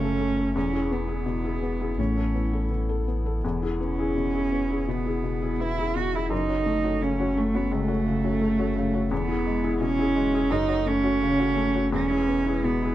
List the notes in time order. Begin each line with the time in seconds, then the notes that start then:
Already playing: F#1 C#3 A3 C#4 A4
0.03 A4
0.20 A3
0.37 A4
0.55 E1 E2 B3 C#4 E4 G#4
0.73 E4 G#4
0.91 B3
1.08 E4 G#4
1.26 B2
1.44 E4 G#4
1.63 B3
1.81 E4 G#4
1.97 A1 A2 C#4 A4
2.17 E4 A4
2.35 B3
2.53 E4 A4
2.71 E3
2.89 E4 A4
3.08 B3
3.25 E4 A4
3.43 E1 E2 G#4
3.62 E4 G#4
3.80 B3 C#4
3.99 E4 G#4
4.16 B2
4.34 E4 G#4
4.52 B3
4.70 E4 G#4
4.88 B2 B3
5.06 E4 G#4
5.24 B2
5.42 E4 G#4
5.60 B3 E4
5.78 E4 G#4
5.96 B2 F#4
6.13 E4 G#4
6.30 F#1 F#2 C#4 D#4 F#4 A4
6.48 C#4 F#4
6.66 A3
6.84 C#4 F#4
7.01 C#3 C#4
7.19 C#4 F#4
7.37 A3
7.54 B3 C#4 F#4
7.71 C#2 A3
7.88 C#4 F#4
8.06 C#3
8.24 C#4 F#4
8.41 A3
8.59 C#4 F#4
8.76 C#3
8.93 C#4 F#4
9.10 E1 E2 B3 E4 G#4
9.28 E4 G#4
9.46 G#3
9.63 E4 G#4
9.80 B2 C#4
9.99 E4 G#4
10.16 G#3
10.33 E4 G#4
10.50 F#1 F#2 A3 C#4 D#4 A4
10.68 C#4 F#4
10.86 A3 C#4
11.04 C#4 F#4
11.21 C#3
11.39 C#4 F#4
11.56 A3
11.74 C#4 F#4
11.92 E1 E2 G#3 C#4 E4 B4
12.10 E4 G#4
12.28 B3
12.46 E4 G#4
12.64 B2 B3
12.82 E4 G#4